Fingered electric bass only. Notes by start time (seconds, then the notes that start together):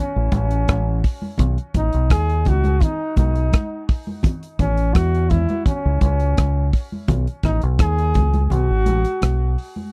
0.16 A1
0.32 A1
0.69 A1
1.40 B1
1.75 A1
1.94 B1
2.11 D#2
2.47 C#2
3.17 B1
4.59 A1
4.95 E2
5.85 C#2
6.01 C#2
6.38 C#2
7.09 B1
7.44 A1
7.63 B1
7.79 D#2
8.16 C#2
8.51 B1
8.70 G#1
8.87 A1
9.23 B1